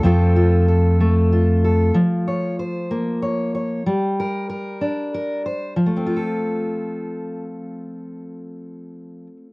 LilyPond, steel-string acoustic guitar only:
\new Staff \with { instrumentName = "Steel-string acoustic guitar" } { \time 6/8 \key f \major \tempo 4. = 63 << { <a c' f' a'>8 f'8 a'4 f'8 a'8 | r8 des''8 c''4 des''8 des''8 | r8 bes'8 bes'4 bes'8 c''8 | <a c' f' a'>2.~ |
<a c' f' a'>2. | } \\ { f4. a4. | f4. bes4. | g4. d'4. | f2.~ |
f2. | } >> }